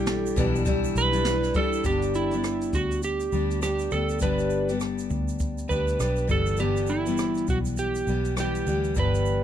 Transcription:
Already playing: fingered electric bass B1, steel-string acoustic guitar G3 D4 E4, electric slide guitar G4
0.07 vibraphone A4, snare, shaker
0.26 shaker
0.36 fingered electric bass B1, steel-string acoustic guitar B2 E3 G3 D4 E4, vibraphone B4, kick, shaker
0.56 shaker
0.65 steel-string acoustic guitar E3 G3 D4 E4, vibraphone G4, kick, shaker
0.84 shaker
0.95 fingered electric bass B1, electric slide guitar B4, shaker
1.13 steel-string acoustic guitar D4 E4, shaker
1.15 steel-string acoustic guitar G3, shaker
1.24 vibraphone E4, snare, shaker
1.42 snare, shaker
1.54 steel-string acoustic guitar E3 G3 D4 E4, electric slide guitar A4, kick, shaker
1.73 shaker
1.84 fingered electric bass G1, steel-string acoustic guitar G2 D3 G3 B3 D4 G4, electric slide guitar G4, kick, shaker
2.02 shaker
2.14 electric slide guitar E4, shaker
2.31 steel-string acoustic guitar B3 D4 G4, shaker
2.33 steel-string acoustic guitar G3, shaker
2.44 cross-stick, shaker
2.62 shaker
2.73 fingered electric bass D2, electric slide guitar F#4, kick, shaker
2.91 shaker
3.02 electric slide guitar G4, shaker
3.20 shaker
3.32 fingered electric bass D2, steel-string acoustic guitar G3 B3 D4 G4, shaker
3.51 shaker
3.62 steel-string acoustic guitar G3 B3 D4 G4, electric slide guitar G4, cross-stick, shaker
3.79 shaker
3.81 shaker
3.91 fingered electric bass D2, steel-string acoustic guitar G3 B3 D4, electric slide guitar A4, shaker
3.95 steel-string acoustic guitar G4
4.09 shaker
4.19 steel-string acoustic guitar G2 D3, shaker
4.21 fingered electric bass G1, steel-string acoustic guitar G3 B3 D4 G4, electric slide guitar B4, kick, shaker
4.38 shaker
4.50 shaker
4.69 steel-string acoustic guitar G3 B3 D4 G4, shaker
4.80 cross-stick, shaker
4.98 shaker
5.10 fingered electric bass D2, kick, shaker
5.28 shaker
5.39 kick, shaker
5.58 shaker
5.68 fingered electric bass D2, steel-string acoustic guitar G3 B3 D4 G4, electric slide guitar B4, kick, shaker
5.87 shaker
5.99 fingered electric bass B1, steel-string acoustic guitar G3 B3 D4 G4, cross-stick, shaker
6.16 shaker
6.18 shaker
6.27 fingered electric bass G1, steel-string acoustic guitar E3 G3 B3 G4, electric slide guitar A4, kick, shaker
6.46 shaker
6.57 steel-string acoustic guitar G2 D3 E3, shaker
6.59 steel-string acoustic guitar G3 B3 G4, electric slide guitar G4, shaker
6.76 shaker
6.87 electric slide guitar E4, shaker
7.06 steel-string acoustic guitar E3 G3 B3 G4, shaker
7.17 cross-stick, shaker
7.35 shaker
7.37 shaker
7.47 fingered electric bass B1, kick, shaker
7.49 electric slide guitar F#4, shaker
7.65 shaker
7.77 electric slide guitar G4, shaker
7.95 shaker
8.07 fingered electric bass B1, steel-string acoustic guitar E3 G3 B3 G4, shaker
8.25 shaker
8.37 steel-string acoustic guitar E3 G3 B3 G4, electric slide guitar G4, cross-stick, shaker
8.55 shaker
8.66 fingered electric bass D2, steel-string acoustic guitar E3 G3 B3 G4, shaker
8.84 shaker
8.95 fingered electric bass G1, steel-string acoustic guitar G2 D3, kick, shaker
8.97 steel-string acoustic guitar E3 G3 B3 G4, electric slide guitar B4, shaker
9.14 shaker
9.26 shaker

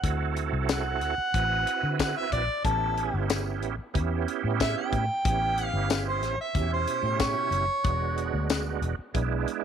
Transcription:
Already playing: harmonica F#5
0.03 fingered electric bass D2, tonewheel organ C4 E4 F#4 A4, kick, closed hi-hat
0.36 closed hi-hat
0.53 fingered electric bass C2
0.69 harmonica F#5, snare, closed hi-hat, tambourine
1.01 fingered electric bass D2, closed hi-hat
1.18 muted fingered electric bass stroke
1.34 fingered electric bass A1, tonewheel organ C4 E4 F#4 B4, kick, closed hi-hat
1.67 closed hi-hat
1.83 fingered electric bass D3
2.00 harmonica F#5, kick, snare, closed hi-hat, tambourine
2.17 harmonica E5
2.32 fingered electric bass A#1, harmonica D5, kick, closed hi-hat
2.64 fingered electric bass A1, tonewheel organ B3 C#4 E4 G4, harmonica A4, kick, closed hi-hat
2.97 closed hi-hat
3.14 fingered electric bass G1
3.30 snare, closed hi-hat, tambourine
3.62 fingered electric bass A1, closed hi-hat
3.79 muted fingered electric bass stroke
3.94 fingered electric bass E2, tonewheel organ B3 C#4 E4 G4, kick, closed hi-hat
4.28 closed hi-hat
4.44 fingered electric bass A2
4.60 harmonica E5, kick, snare, closed hi-hat, tambourine
4.77 harmonica G5
4.93 fingered electric bass A2, kick, closed hi-hat
5.25 fingered electric bass A1, tonewheel organ B3 C#4 E4 G4, kick, closed hi-hat
5.58 closed hi-hat
5.65 harmonica F5
5.73 fingered electric bass G1
5.90 snare, closed hi-hat, tambourine
6.08 harmonica C5
6.22 fingered electric bass A1, snare, closed hi-hat
6.38 harmonica E5, muted fingered electric bass stroke
6.55 fingered electric bass E2, tonewheel organ B2 C#4 E4 G4, kick, closed hi-hat
6.73 harmonica C5
6.87 closed hi-hat
7.03 fingered electric bass A2
7.20 harmonica C#5, kick, snare, closed hi-hat, tambourine
7.51 fingered electric bass F#1, closed hi-hat
7.84 fingered electric bass E1, tonewheel organ G#3 B3 D4 F#4, kick, closed hi-hat
8.17 closed hi-hat
8.34 fingered electric bass D2
8.50 snare, closed hi-hat, tambourine
8.81 fingered electric bass E1, closed hi-hat
8.99 muted fingered electric bass stroke
9.14 fingered electric bass B1, tonewheel organ G#3 B3 D4 E4, kick, closed hi-hat
9.48 closed hi-hat

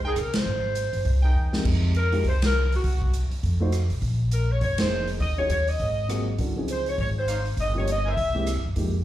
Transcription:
Already playing: upright bass C2
0.04 trumpet section D#4 G#4 A#4 G5, saxophone section G#4
0.16 upright bass C3, saxophone section A#4, cross-stick, closed hi-hat
0.33 saxophone section C5, snare, ride
0.46 upright bass G#1
0.75 closed hi-hat
0.93 upright bass G1, open hi-hat
1.05 upright bass C2, kick, open hi-hat
1.22 trumpet section D#4 G#4 A#4 G5
1.34 upright bass E2
1.53 grand piano F2 G#3 D#4 G4 A#4, snare
1.65 upright bass F2, kick, crash
1.95 saxophone section A#4, closed hi-hat
2.12 grand piano G#3 D#4 F4 G4 A#4, open hi-hat
2.24 upright bass C2, saxophone section C5, kick, open hi-hat
2.42 saxophone section A#4, snare, ride
2.72 saxophone section F#4, open hi-hat
2.84 upright bass C2, kick, open hi-hat
3.02 kick
3.13 closed hi-hat
3.31 muted upright bass stroke, open hi-hat
3.43 upright bass F2, kick, open hi-hat
3.60 grand piano A3 D#4 F4 F#4 C5
3.72 cross-stick, closed hi-hat
3.90 upright bass B1, open hi-hat
4.02 upright bass A#1, kick, open hi-hat
4.31 saxophone section A#4, closed hi-hat
4.51 saxophone section C#5
4.61 upright bass F1, saxophone section C#5, kick, open hi-hat
4.78 grand piano A#3 C#4 D#4 G#4 C5, saxophone section C5, snare, ride
5.07 open hi-hat
5.20 upright bass D#2, saxophone section D#5, kick, open hi-hat
5.38 grand piano F#3 C#4 D#4 F4 G#4, saxophone section C#5
5.49 upright bass D#2, saxophone section C#5, closed hi-hat
5.67 saxophone section D#5, open hi-hat
5.79 upright bass G#1, kick, open hi-hat
6.08 grand piano F#3 A#3 C4 F4 G#4, cross-stick, closed hi-hat
6.38 upright bass C#2, grand piano F#3 C#4 D4 E4 A4, kick, open hi-hat
6.56 grand piano F3 C4 C#4 D#4 G#4
6.68 saxophone section C5, closed hi-hat
6.86 saxophone section C#5, open hi-hat
6.98 upright bass G#1, saxophone section C#5, kick, open hi-hat
7.19 saxophone section C5
7.28 trumpet section D#4 C5 C#5 F5, cross-stick, closed hi-hat
7.45 open hi-hat
7.57 upright bass G1, saxophone section D#5, kick, open hi-hat
7.75 grand piano F3 G3 A#3 C#4 G4, saxophone section C#5
7.87 saxophone section D#5, closed hi-hat
8.05 trumpet section E4 A#4 C5 G#5
8.09 saxophone section E5
8.17 upright bass C2, kick, open hi-hat
8.34 grand piano E3 G#3 A#3 C4 G4
8.47 cross-stick, closed hi-hat
8.56 upright bass E2
8.66 upright bass F#2
8.76 upright bass F2, grand piano F3 G#3 A#3 D#4 G4, kick, open hi-hat

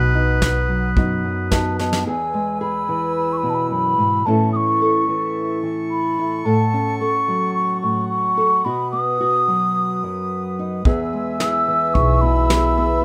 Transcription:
Already playing: upright bass B1, nylon-string guitar B2 B3, felt piano F#3 B3 D#4 F#4, clarinet B4, flute section B4 F#5 D#6
0.14 felt piano D#4, nylon-string guitar D#4
0.42 felt piano F#4, kick, snare
0.69 nylon-string guitar F#3
0.97 upright bass F#2, felt piano B3 D#4 F#4, nylon-string guitar F#4, kick
1.24 nylon-string guitar F#2
1.51 felt piano B3 D#4 F#4, nylon-string guitar B3, flute A5, kick, snare
1.79 felt piano B3, nylon-string guitar D#4, flute A5, snare
1.93 snare
2.06 nylon-string guitar E2 G#4, flute section B4 G#5 E6, flute G#5
2.34 nylon-string guitar G#3
2.61 nylon-string guitar G#4, flute B5
2.89 nylon-string guitar E3
3.16 flute B5
3.33 flute C#6
3.37 flute B5
3.43 nylon-string guitar B2
3.50 flute A5
3.54 flute B5
3.70 nylon-string guitar F#2, flute B5
3.98 nylon-string guitar G#2
4.26 nylon-string guitar A2 E3 C#4 E4 A4, flute section A4 E5 C#6, flute A5
4.53 nylon-string guitar C#4, flute C#6 D#6
4.82 nylon-string guitar A4
5.08 nylon-string guitar E3
5.63 nylon-string guitar E3
5.91 flute B5
6.19 nylon-string guitar E4
6.39 flute B5
6.45 nylon-string guitar A2 A4, flute section F#5, flute A5
6.74 nylon-string guitar C#4
6.99 nylon-string guitar A4, flute C#6
7.28 nylon-string guitar F#3
7.54 flute C#6
7.82 nylon-string guitar A2, flute C#6
8.09 flute C#6
8.37 nylon-string guitar A4
8.65 nylon-string guitar B2 F#4, flute section B4 D#6, flute B5
8.92 nylon-string guitar B3, flute D#6
9.20 nylon-string guitar F#4
9.48 nylon-string guitar F#3
10.03 nylon-string guitar F#2
10.59 nylon-string guitar D#4
10.85 upright bass E2, nylon-string guitar E2 G#4, felt piano B3 G#4, clarinet E5, flute section G#5 E6, kick
11.13 nylon-string guitar G#3
11.40 felt piano E4, nylon-string guitar G#4, flute E6, snare
11.68 nylon-string guitar E3
11.94 upright bass B1, felt piano G#4, flute C#6, kick
12.21 nylon-string guitar B2, felt piano E4, flute B5
12.49 felt piano B3 E4 G#4, snare
12.77 nylon-string guitar B3, felt piano G#4
12.98 flute B5

